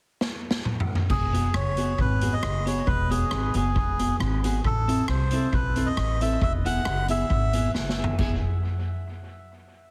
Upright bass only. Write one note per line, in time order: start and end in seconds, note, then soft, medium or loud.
1.10 1.47 E1 medium
1.54 1.92 F#1 medium
1.98 2.36 G#1 loud
2.43 2.80 F#1 medium
2.87 3.25 E1 loud
3.31 3.51 G#1 medium
3.54 3.76 F#1 medium
3.76 4.13 E1 medium
4.20 4.58 G#1 medium
4.64 5.02 A1 loud
5.08 5.46 C2 medium
5.53 5.91 B1 medium
5.97 6.35 A1 medium
6.41 6.79 E1 loud
6.86 7.24 F#1 medium
7.30 7.68 G#1 medium
7.75 8.12 F#1 medium
8.19 8.41 E1 medium